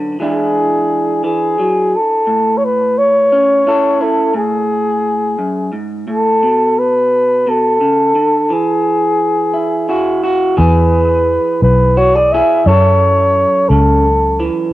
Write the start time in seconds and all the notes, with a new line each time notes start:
Already playing: F#2 D3
0.20 E3 G#3 D4 E4 G#4
1.24 E3 G#4
1.59 F#3
1.96 A4
2.27 A2
2.57 C#5
2.65 B4
2.98 C#5
3.32 C#4
3.67 C#4 E4 A4
4.01 E4 A4
4.34 A2 G#4
5.39 F#2
5.73 G#2
6.07 A2 A4
6.43 B2
6.79 B4
7.47 B2 A4
7.81 C#3
8.15 D3
8.50 E3 G#4
9.54 E4
9.89 E4 F#4
10.24 F#4
10.57 E2 E3 G#4 B4
11.62 B1 B4
11.97 F#4 C#5
12.15 G#4 D5
12.32 E4 G#4 E5
12.66 F#2 A4 C#5
13.69 C#2 C#3 A4
14.40 E3